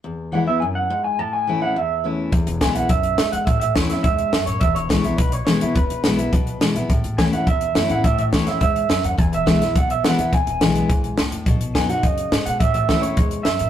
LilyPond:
<<
  \new Staff \with { instrumentName = "Clean electric guitar" } { \time 4/4 \key e \major \tempo 4 = 210 r4 fis''8 e''8 gis''8 fis''4 gis''8 | a''8 gis''4 fis''8 e''4 r4 | r4 gis''8 fis''8 e''4. fis''8 | e''8 e''8 cis''8 e''8 e''4. cis''8 |
e''8 cis''4. b'8 cis''8 cis''4 | b'2. r4 | r4 gis''8 fis''8 e''4. fis''8 | e''8 e''8 cis''8 e''8 e''4. fis''8 |
gis''8 e''4. fis''8 e''8 fis''4 | gis''2. r4 | r4 gis''8 fis''8 dis''4. fis''8 | e''8 e''4 cis''4. e''4 | }
  \new Staff \with { instrumentName = "Steel-string acoustic guitar" } { \time 4/4 \key e \major << { r4 <e gis b e'>8 <b e'>8 r2 | r4 <e a cis' e'>8 <cis' e'>8 r4 <e a cis' e'>4 | r4 <e gis b e'>8 <b e'>8 r2 | r4 <e a cis' e'>8 <cis' e'>8 r2 |
r4 <e gis b e'>8 <b e'>8 r4 <e gis b e'>8 <b e'>8 | r4 <e gis b e'>8 <b e'>8 r4 <e gis b e'>8 <b e'>8 | r4 <e a cis' e'>8 <cis' e'>8 r4 <e a cis' e'>8 <cis' e'>8 | r4 <e a cis' e'>8 <cis' e'>8 r2 |
r4 <e gis b e'>8 <b e'>8 r4 <e gis b e'>8 <b e'>8 | r4 <e gis b e'>4 r2 | r4 <fis b dis' fis'>8 <dis' fis'>8 r2 | r4 <e a cis' e'>8 <cis' e'>8 r2 | } \\ { e,2 fis,4 gis,4 | a,2 e,2 | e,2 fis,4 gis,4 | a,2 gis,4 fis,4 |
e,2 b,2 | e,2 b,2 | a,2 e,2 | a,2 gis,4 fis,4 |
e,2 b,2 | e,2 gis,4 a,4 | b,2 cis4 gis,4 | a,2 gis,4 fis,4 | } >> }
  \new Staff \with { instrumentName = "Upright bass" } { \clef bass \time 4/4 \key e \major r1 | r1 | e,,8 e,,8 b,,4 b,,4 cis,8 e,8 | a,,8 a,,8 e,4 e,4 fis,8 a,8 |
e,,8 e,,8 b,,4 b,,4 cis,8 e,8 | e,,8 e,,8 b,,4 b,,4 cis,8 b,,8 | a,,8 a,,8 e,4 e,4 fis,8 a,8 | a,,8 a,,8 e,4 e,4 fis,8 dis,8 |
e,,8 e,,8 b,,4 b,,4 cis,8 e,8 | e,,8 e,,8 b,,4 b,,4 cis,8 e,8 | b,,8 b,,8 fis,4 fis,4 gis,8 b,8 | a,,8 a,,8 e,4 e,4 fis,8 a,8 | }
  \new DrumStaff \with { instrumentName = "Drums" } \drummode { \time 4/4 r4 r4 r4 r4 | r4 r4 r4 r4 | <hh bd>8 hh8 <hh bd sn>8 hh8 <hh bd>8 hh8 <hh sn>8 hh8 | <hh bd>8 hh8 <hh bd sn>8 <hh sn>8 <hh bd>8 hh8 <hh sn>8 hh8 |
<hh bd>8 hh8 <hh bd sn>8 hh8 <hh bd>8 hh8 <hh sn>8 hh8 | <hh bd>8 hh8 <hh sn>8 hh8 <hh bd>8 hh8 <hh sn>8 hh8 | <hh bd>8 hh8 <hh bd sn>8 hh8 <hh bd>8 hh8 <hh sn>8 hh8 | <hh bd>8 hh8 <hh bd sn>8 <hh sn>8 <hh bd>8 hh8 <hh sn>8 hh8 |
<hh bd>8 hh8 <hh bd sn>8 <hh sn>8 <hh bd>8 hh8 <hh sn>8 hh8 | <hh bd>8 hh8 <hh sn>8 hh8 <hh bd>8 hh8 <hh sn>8 hh8 | <hh bd>8 hh8 <hh bd sn>8 hh8 <hh bd>8 hh8 <hh sn>8 hh8 | <hh bd>8 hh8 <hh bd sn>8 hh8 <hh bd>8 hh8 <hh sn>8 hh8 | }
>>